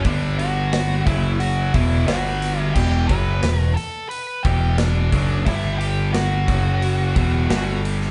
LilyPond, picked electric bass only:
\new Staff \with { instrumentName = "Picked electric bass" } { \clef bass \time 4/4 \key e \dorian \tempo 4 = 89 g,,4. fis,,4 e,,8 g,,4 | e,,8 fis,,8 e,,8 r4 e,,4 fis,,8 | g,,4. fis,,4 e,,8 g,,4 | }